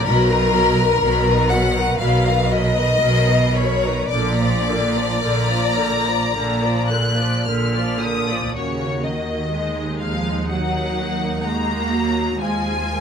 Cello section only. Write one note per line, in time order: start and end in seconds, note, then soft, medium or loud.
0.05 0.90 B2 medium
1.02 1.89 B2 medium
1.99 2.91 B2 medium
3.03 3.99 B2 medium
4.13 5.09 A#2 medium
5.22 6.21 A#2 medium
6.35 7.34 A#2 medium
7.47 8.43 A#2 medium
8.56 9.01 C#3 medium
9.05 10.02 D#3 medium
10.02 10.50 F3 medium
10.50 11.45 F#3 medium
11.46 12.41 A#3 medium
12.41 13.00 G#3 medium